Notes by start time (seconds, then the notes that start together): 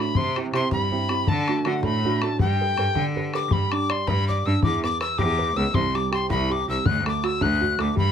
Already playing: A3 D4
0.00 F#4 B5
0.15 C3 C6, bodhran
0.36 C4 E4 G4, bodhran
0.53 C3 C4 E4 G4 C6, bodhran
0.71 G2 G3 B5, bodhran
0.91 C4 E4 G4, bodhran
1.09 C4 E4 G4, bodhran
1.27 D3 A5, bodhran
1.48 A3 D4 F#4, bodhran
1.65 D3 A3 D4 F#4 F#5, bodhran
1.83 A2 A3 B5, bodhran
2.04 A3 D4 F#4, bodhran
2.22 A3 D4 F#4 A5, bodhran
2.39 G2 G3 G5, bodhran
2.60 G4 A4 B4
2.77 G2 G4 A4 B4, bodhran
2.95 D3, bodhran
3.16 G4 A4 B4, bodhran
3.34 G4 A4 B4 D6, bodhran
3.51 G2 G3 B5, bodhran
3.72 D4 D6, bodhran
3.90 D5 C6, bodhran
4.07 G2 B4 B5, bodhran
4.18 bodhran
4.28 D5 D6, bodhran
4.46 G2 D4 E6
4.62 E2 E3 D6, bodhran
4.84 B3 D6, bodhran
5.01 B4 E6, bodhran
5.18 E2 G4 D6, bodhran
5.29 bodhran
5.39 B4, bodhran
5.56 C#2 B3 E6
5.74 C2 C3 C6, bodhran
5.95 G3 D6, bodhran
6.12 G4 C6, bodhran
6.30 C2 E4 B5, bodhran
6.41 bodhran
6.50 G4 D6
6.68 C2 G3 E6
6.85 D2 D3 F#6, bodhran
7.06 A3 D6, bodhran
7.24 F#4 E6, bodhran
7.41 D2 D4 F#6, bodhran
7.52 bodhran
7.61 F#4, bodhran
7.79 D2 A3 D6, bodhran
7.96 G2 G3 B5, bodhran